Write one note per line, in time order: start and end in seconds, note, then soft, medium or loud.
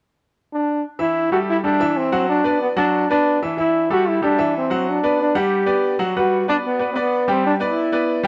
0.53 0.82 D4 medium
0.99 1.26 E3 medium
0.99 1.26 E4 medium
0.99 1.30 E4 medium
0.99 1.26 E5 medium
1.32 1.58 G3 medium
1.32 1.39 F#4 medium
1.32 1.59 G4 medium
1.32 1.59 A4 medium
1.50 1.57 E4 medium
1.64 1.77 G3 medium
1.64 1.99 D4 medium
1.64 1.77 G4 medium
1.64 1.78 A4 medium
1.80 2.07 E3 medium
1.80 2.07 E4 medium
1.80 2.07 E5 medium
1.97 2.28 C4 medium
2.12 2.39 F#3 medium
2.12 2.39 F#4 medium
2.12 2.39 F#5 medium
2.29 2.59 D4 medium
2.44 2.71 B3 medium
2.44 2.71 B4 medium
2.44 2.72 D5 medium
2.62 2.69 B3 medium
2.76 3.03 F#3 medium
2.76 3.08 D4 medium
2.76 3.03 F#4 medium
2.76 3.03 F#5 medium
3.10 3.36 B3 medium
3.10 3.40 D4 medium
3.10 3.37 B4 medium
3.10 3.37 D5 medium
3.42 3.55 E3 medium
3.42 3.56 E4 medium
3.42 3.56 E5 medium
3.57 3.84 E3 medium
3.57 3.84 E4 medium
3.57 3.89 E4 medium
3.57 3.85 E5 medium
3.90 4.17 G3 medium
3.90 4.10 F#4 medium
3.90 4.17 G4 medium
3.90 4.17 A4 medium
4.08 4.23 E4 medium
4.22 4.35 G3 medium
4.22 4.53 D4 loud
4.22 4.36 G4 medium
4.22 4.36 A4 medium
4.38 4.65 E3 medium
4.38 4.65 E4 medium
4.38 4.65 E5 medium
4.58 4.91 C4 medium
4.70 4.97 F#3 medium
4.70 4.97 F#4 medium
4.70 4.97 F#5 medium
4.90 5.21 D4 medium
5.03 5.30 B3 medium
5.03 5.30 B4 medium
5.03 5.30 D5 medium
5.21 5.39 D4 medium
5.35 5.62 G3 medium
5.35 5.62 G4 medium
5.35 6.01 G4 medium
5.35 5.62 F#5 medium
5.66 5.93 B3 medium
5.66 5.93 B4 medium
5.66 5.94 D5 medium
5.99 6.13 F#3 medium
5.99 6.13 F#4 medium
5.99 6.13 F#5 medium
6.17 6.43 G3 medium
6.17 6.47 F#4 medium
6.17 6.43 B4 medium
6.17 6.43 F#5 medium
6.48 6.75 B3 medium
6.48 6.56 D4 medium
6.48 6.75 B4 medium
6.48 6.75 D5 medium
6.67 6.89 B3 medium
6.79 6.93 B3 medium
6.79 6.93 B4 medium
6.79 6.93 D5 medium
6.93 7.22 B3 medium
6.93 7.01 C4 medium
6.93 7.23 B4 medium
6.93 7.23 D5 medium
6.99 7.30 B3 medium
7.28 7.55 G3 medium
7.28 7.45 C4 medium
7.28 7.55 G4 medium
7.28 7.55 G5 medium
7.47 7.54 D4 medium
7.60 7.87 B3 medium
7.60 8.22 E4 medium
7.60 7.87 B4 medium
7.60 7.87 D5 medium
7.92 8.19 B3 medium
7.92 8.19 B4 medium
7.92 8.19 D5 medium
8.23 8.27 G3 medium